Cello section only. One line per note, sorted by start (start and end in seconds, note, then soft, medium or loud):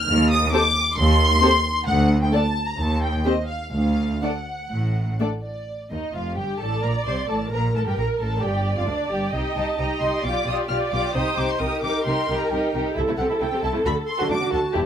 0.08 0.45 D#2 medium
0.98 1.35 D#2 medium
1.88 2.25 D2 medium
2.79 3.18 D#2 medium
3.73 4.14 D2 medium
4.71 5.12 A2 medium
5.91 5.99 D#2 soft
6.14 6.37 F2 soft
6.37 6.60 G2 soft
6.61 6.83 A2 medium
6.84 6.92 A#2 soft
7.07 7.29 C3 soft
7.30 7.52 A2 soft
7.52 7.75 A#2 medium
7.74 7.79 A2 soft
7.86 7.97 G2 soft
7.97 8.05 A#2 soft
8.20 8.42 A2 soft
8.43 8.77 G2 medium
8.76 8.81 F2 soft
8.87 8.95 D2 soft
9.11 9.34 G2 soft
9.33 9.41 C3 soft
9.56 9.64 C3 soft
9.79 9.87 C3 soft
10.01 10.09 C3 soft
10.23 10.31 B2 soft
10.46 10.54 B2 soft
10.69 10.77 B2 soft
10.92 11.00 B2 soft
11.15 11.23 C3 medium
11.37 11.45 C3 soft
11.60 11.68 C3 soft
11.83 11.91 C3 soft
12.06 12.14 C3 medium
12.29 12.37 C3 medium
12.52 12.60 C3 soft
12.75 12.83 C3 medium
12.97 13.02 C3 medium
13.09 13.13 C3 soft
13.20 13.24 C3 soft
13.30 13.35 C3 medium
13.42 13.46 C3 soft
13.54 13.58 C3 soft
13.65 13.69 C3 medium
13.76 13.81 C3 soft
13.88 13.92 D3 medium
14.21 14.26 D3 medium
14.33 14.37 D3 soft
14.44 14.48 D3 soft
14.55 14.59 D3 medium
14.76 14.81 E2 medium